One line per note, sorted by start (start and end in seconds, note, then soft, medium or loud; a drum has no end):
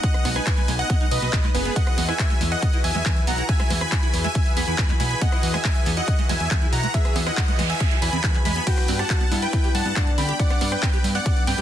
0.00 1.72 G#3 medium
0.00 0.06 G#3 medium
0.00 1.72 B3 medium
0.00 1.72 D#4 medium
0.00 0.31 D#5 medium
0.00 0.31 F#5 loud
0.00 kick loud
0.00 closed hi-hat medium
0.14 cross-stick medium
0.14 closed hi-hat soft
0.25 0.40 B1 loud
0.25 0.30 B3 medium
0.25 cross-stick medium
0.25 open hi-hat loud
0.36 0.40 D#4 medium
0.36 0.73 B4 medium
0.36 0.73 G#5 loud
0.36 cross-stick medium
0.36 closed hi-hat soft
0.47 kick loud
0.47 clap loud
0.47 closed hi-hat medium
0.57 0.60 G#3 medium
0.57 closed hi-hat soft
0.68 0.83 B1 loud
0.68 0.71 G#3 medium
0.68 open hi-hat loud
0.79 1.07 D#5 medium
0.79 1.07 F#5 loud
0.79 1.07 F#5 medium
0.79 closed hi-hat soft
0.90 0.94 B3 medium
0.90 kick loud
0.90 closed hi-hat medium
1.01 1.05 D#4 medium
1.01 closed hi-hat soft
1.11 1.19 B1 medium
1.11 1.49 B4 medium
1.11 1.49 D#5 loud
1.11 1.49 D#5 medium
1.11 open hi-hat loud
1.22 1.30 B1 medium
1.22 1.25 B3 medium
1.22 closed hi-hat soft
1.33 1.48 B1 medium
1.33 1.38 B3 medium
1.33 kick loud
1.33 clap loud
1.33 closed hi-hat medium
1.44 1.48 G#3 medium
1.44 clap soft
1.44 closed hi-hat soft
1.54 1.69 F#1 medium
1.54 1.61 B3 medium
1.54 1.73 G#4 medium
1.54 1.73 B4 medium
1.54 open hi-hat medium
1.65 1.72 B3 medium
1.65 closed hi-hat soft
1.76 8.63 E3 medium
1.76 1.79 G#3 medium
1.76 8.63 E4 medium
1.76 8.63 F#4 medium
1.76 8.63 G#4 medium
1.76 8.63 B4 medium
1.76 2.04 D#5 medium
1.76 2.04 F#5 loud
1.76 kick loud
1.76 closed hi-hat medium
1.87 cross-stick medium
1.87 closed hi-hat soft
1.98 2.13 E2 loud
1.98 2.02 B3 medium
1.98 open hi-hat loud
2.08 2.13 E4 medium
2.08 2.46 E5 medium
2.08 2.46 G#5 loud
2.08 cross-stick medium
2.19 kick loud
2.19 clap loud
2.19 closed hi-hat medium
2.30 2.33 G#3 medium
2.30 closed hi-hat soft
2.41 2.56 E2 loud
2.41 2.44 G#3 medium
2.41 open hi-hat medium
2.52 2.80 D#5 medium
2.52 2.80 F#5 loud
2.52 2.80 F#5 medium
2.52 closed hi-hat soft
2.62 2.67 B3 medium
2.62 kick loud
2.62 closed hi-hat medium
2.73 2.78 E4 medium
2.73 closed hi-hat soft
2.84 2.92 E2 medium
2.84 3.21 E5 medium
2.84 3.21 G#5 loud
2.84 open hi-hat loud
2.95 3.02 E2 medium
2.95 2.98 G#3 medium
2.95 closed hi-hat soft
3.06 3.08 G#3 medium
3.06 kick loud
3.06 clap loud
3.06 closed hi-hat medium
3.16 closed hi-hat soft
3.27 3.42 B1 medium
3.27 3.32 B3 medium
3.27 3.46 F#5 medium
3.27 3.46 A#5 medium
3.27 open hi-hat medium
3.38 3.43 E4 medium
3.38 closed hi-hat soft
3.49 3.77 E5 medium
3.49 3.77 G#5 loud
3.49 kick loud
3.49 closed hi-hat medium
3.60 3.62 G#3 medium
3.60 cross-stick medium
3.60 closed hi-hat soft
3.70 3.85 E2 loud
3.70 3.73 G#3 medium
3.70 cross-stick medium
3.70 open hi-hat loud
3.81 4.18 G#5 medium
3.81 4.18 B5 medium
3.81 4.18 B5 loud
3.81 cross-stick medium
3.81 closed hi-hat soft
3.92 3.97 B3 medium
3.92 kick loud
3.92 clap loud
3.92 closed hi-hat medium
4.03 4.07 E4 medium
4.03 closed hi-hat soft
4.14 4.29 E2 medium
4.14 open hi-hat medium
4.24 4.27 G#3 medium
4.24 4.52 E5 medium
4.24 4.52 G#5 loud
4.24 4.52 G#5 medium
4.24 closed hi-hat soft
4.35 4.38 G#3 medium
4.35 kick loud
4.35 closed hi-hat loud
4.46 closed hi-hat soft
4.57 4.64 E2 medium
4.57 4.61 B3 medium
4.57 4.94 G#5 medium
4.57 4.94 B5 loud
4.57 open hi-hat loud
4.67 4.75 E2 medium
4.67 4.72 E4 medium
4.67 closed hi-hat soft
4.78 4.93 E2 medium
4.78 kick loud
4.78 clap loud
4.78 closed hi-hat medium
4.89 4.92 G#3 medium
4.89 clap soft
4.89 closed hi-hat soft
5.00 5.15 B1 medium
5.00 5.03 G#3 medium
5.00 5.19 G#5 medium
5.00 5.18 B5 medium
5.00 5.19 B5 medium
5.00 open hi-hat medium
5.11 closed hi-hat soft
5.21 5.26 B3 medium
5.21 5.49 D#5 medium
5.21 5.49 F#5 loud
5.21 kick loud
5.21 closed hi-hat loud
5.32 5.37 E4 medium
5.32 cross-stick medium
5.32 closed hi-hat soft
5.43 5.58 E2 loud
5.43 open hi-hat loud
5.54 5.57 G#3 medium
5.54 5.91 E5 medium
5.54 5.91 G#5 medium
5.54 5.91 G#5 loud
5.54 cross-stick medium
5.54 closed hi-hat soft
5.65 5.67 G#3 medium
5.65 kick loud
5.65 clap loud
5.65 closed hi-hat loud
5.75 closed hi-hat soft
5.86 6.01 E2 medium
5.86 5.91 B3 medium
5.86 open hi-hat medium
5.97 6.02 E4 medium
5.97 6.25 D#5 medium
5.97 6.25 F#5 loud
5.97 closed hi-hat soft
6.08 kick loud
6.08 closed hi-hat loud
6.19 6.21 G#3 medium
6.19 closed hi-hat soft
6.29 6.37 E2 medium
6.29 6.32 G#3 medium
6.29 6.67 E5 medium
6.29 6.67 G#5 medium
6.29 open hi-hat loud
6.40 6.48 E2 medium
6.40 closed hi-hat soft
6.51 6.66 E2 medium
6.51 6.56 B3 medium
6.51 kick loud
6.51 clap loud
6.51 closed hi-hat loud
6.62 6.66 E4 medium
6.62 closed hi-hat soft
6.73 6.88 B1 medium
6.73 6.91 F#5 medium
6.73 6.91 A#5 medium
6.73 open hi-hat medium
6.83 6.86 G#3 medium
6.83 closed hi-hat soft
6.94 6.97 G#3 medium
6.94 7.22 G#4 medium
6.94 7.22 E5 loud
6.94 kick loud
6.94 closed hi-hat loud
6.94 noise sweep medium
7.05 cross-stick medium
7.05 closed hi-hat soft
7.16 7.31 E2 loud
7.16 7.20 B3 medium
7.16 cross-stick medium
7.16 open hi-hat loud
7.26 7.31 E4 medium
7.26 7.64 D#5 medium
7.26 7.64 F#5 loud
7.26 7.64 F#5 medium
7.26 cross-stick medium
7.26 closed hi-hat soft
7.37 kick loud
7.37 clap loud
7.37 closed hi-hat loud
7.48 7.51 G#3 medium
7.48 closed hi-hat soft
7.59 7.74 E2 loud
7.59 7.62 G#3 medium
7.59 open hi-hat medium
7.70 7.98 E5 medium
7.70 7.98 G#5 loud
7.70 7.98 G#5 medium
7.70 closed hi-hat soft
7.80 7.85 B3 medium
7.80 kick loud
7.80 closed hi-hat loud
7.91 7.96 E4 medium
7.91 closed hi-hat soft
8.02 8.10 E2 loud
8.02 8.39 G#5 medium
8.02 8.39 B5 loud
8.02 8.39 B5 medium
8.02 open hi-hat loud
8.13 8.20 E2 medium
8.13 8.17 C4 medium
8.13 closed hi-hat soft
8.24 8.31 E4 medium
8.24 kick loud
8.24 clap loud
8.24 closed hi-hat loud
8.34 clap soft
8.34 closed hi-hat soft
8.45 8.60 E2 medium
8.45 8.52 G#3 medium
8.45 8.64 G#5 medium
8.45 8.64 B5 medium
8.45 open hi-hat medium
8.56 8.63 B3 medium
8.56 closed hi-hat soft
8.67 11.62 G3 medium
8.67 11.62 B3 medium
8.67 11.62 D4 medium
8.67 9.23 F#4 loud
8.67 8.95 B4 medium
8.67 8.95 G5 loud
8.67 kick loud
8.67 closed hi-hat loud
8.67 crash medium
8.78 cross-stick medium
8.78 closed hi-hat soft
8.88 9.03 G2 loud
8.88 8.93 C4 medium
8.88 open hi-hat loud
8.99 9.04 G4 medium
8.99 9.36 F#5 medium
8.99 9.36 A5 loud
8.99 cross-stick medium
8.99 closed hi-hat soft
9.10 kick loud
9.10 clap loud
9.10 closed hi-hat medium
9.21 9.24 B3 medium
9.21 closed hi-hat soft
9.32 9.46 G2 loud
9.32 9.34 B3 medium
9.32 9.88 E4 loud
9.32 open hi-hat medium
9.42 9.70 B4 medium
9.42 9.70 G5 loud
9.42 closed hi-hat soft
9.53 9.58 C4 medium
9.53 kick loud
9.53 closed hi-hat loud
9.64 9.69 G4 medium
9.64 closed hi-hat soft
9.75 9.82 G2 medium
9.75 10.12 F#5 medium
9.75 10.12 A5 loud
9.75 open hi-hat loud
9.85 9.93 G2 medium
9.85 9.88 B3 medium
9.85 closed hi-hat soft
9.96 10.11 G2 medium
9.96 9.99 B3 medium
9.96 11.62 D4 medium
9.96 kick loud
9.96 clap loud
9.96 closed hi-hat loud
10.07 closed hi-hat soft
10.18 10.33 D2 medium
10.18 10.23 C4 medium
10.18 10.37 G5 medium
10.18 10.37 B5 medium
10.18 open hi-hat medium
10.29 10.33 G4 medium
10.29 closed hi-hat soft
10.39 10.67 D5 medium
10.39 10.67 F#5 loud
10.39 kick loud
10.39 closed hi-hat loud
10.50 10.53 B3 medium
10.50 cross-stick medium
10.50 closed hi-hat soft
10.61 10.76 G2 loud
10.61 10.64 B3 medium
10.61 cross-stick medium
10.61 open hi-hat loud
10.72 11.09 B4 medium
10.72 11.09 G5 loud
10.72 cross-stick medium
10.72 closed hi-hat soft
10.83 10.87 C4 medium
10.83 kick loud
10.83 clap loud
10.83 closed hi-hat loud
10.93 10.98 G4 medium
10.93 closed hi-hat soft
11.04 11.19 G2 medium
11.04 open hi-hat loud
11.15 11.18 B3 medium
11.15 11.43 D5 medium
11.15 11.43 F#5 loud
11.15 closed hi-hat soft
11.26 11.29 B3 medium
11.26 kick loud
11.26 closed hi-hat loud
11.37 closed hi-hat soft
11.47 11.55 G2 medium
11.47 11.52 C4 medium
11.47 11.62 B4 medium
11.47 11.62 G5 loud
11.47 open hi-hat loud
11.58 11.62 G2 medium
11.58 11.62 G4 medium
11.58 closed hi-hat soft